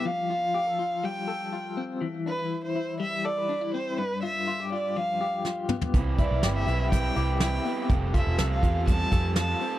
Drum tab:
HH |----------------|----------------|----------------|x-x-x-x-x-x-x-o-|
SD |----------------|----------------|------------o---|----o-------o---|
T2 |----------------|----------------|--------------o-|----------------|
FT |----------------|----------------|---------------o|----------------|
BD |----------------|----------------|----------------|o-o-----o-------|

HH |x-x-x-x-x-x-x-o-|
SD |----o-------o---|
T2 |----------------|
FT |----------------|
BD |o-o---o-o-o-----|